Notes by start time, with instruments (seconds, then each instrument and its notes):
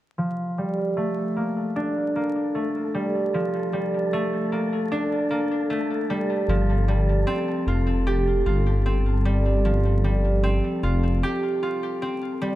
0.18 harp F3, synth texture A4
0.58 harp G3
0.97 harp A3
1.36 harp A#3
1.76 harp D4
2.16 harp A#3
2.55 harp A3
2.95 harp G3
3.34 harp F3
3.73 harp G3
4.13 harp A3
4.52 harp A#3
4.92 harp D4
5.31 harp A#3
5.70 harp A3
6.10 harp G3
6.48 detuned saw bass G1, harp F3
6.88 harp G3
7.27 harp C4
7.67 detuned saw bass F1, harp F4
8.07 harp G4
8.46 detuned saw bass G1, harp F4
8.86 harp C4
9.25 harp G3
9.65 harp F3
10.04 harp G3
10.43 harp C4
10.83 detuned saw bass F1, harp F4
11.23 harp G4
11.63 harp F4
12.02 harp C4
12.42 harp G3